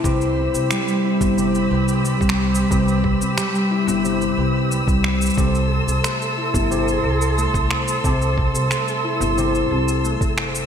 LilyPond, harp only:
\new Staff \with { instrumentName = "Harp" } { \time 4/4 \key c \major \tempo 4 = 90 <c b'>8 c'8 g8 e'8 c8 b'8 g8 c'8 | <c b'>8 c'8 g8 e'8 c8 b'8 g8 c'8 | <c a'>8 c'8 a8 e'8 c8 a'8 a8 c'8 | <c a'>8 c'8 a8 e'8 c8 a'8 a8 c'8 | }